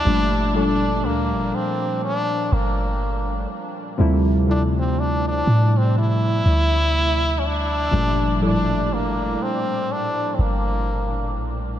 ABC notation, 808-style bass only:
X:1
M:4/4
L:1/16
Q:"Swing 16ths" 1/4=61
K:Gdor
V:1 name="808-style bass" clef=bass
G,,,4 D,, G,,, z4 G,,,4 z2 | D,,6 A,,4 D,,6 | G,,,6 z4 G,,,4 B,,,2 |]